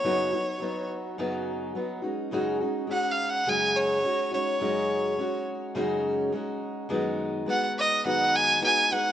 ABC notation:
X:1
M:4/4
L:1/8
Q:1/4=105
K:C#mix
V:1 name="Violin"
c3 z4 z | z2 (3f e f g c2 c- | c3 z4 z | z2 f d f g g f |]
V:2 name="Steel-string acoustic guitar"
[F,,C,F,B,DF] [F,B,DF] [F,B,DF]2 [F,,C,F,B,DF]2 [F,B,DF] [G,CDF] | [F,,C,G,CDF] [G,CDF] [G,CDF]2 [F,,C,G,CDF]2 [G,CDF] [G,CDF] | [F,,C,G,CDF]2 [G,CDF]2 [F,,C,G,CDF]2 [G,CDF]2 | [F,,D,G,B,DF]2 [G,B,DF]2 [F,,D,G,B,DF]2 [G,B,DF] [G,B,DF] |]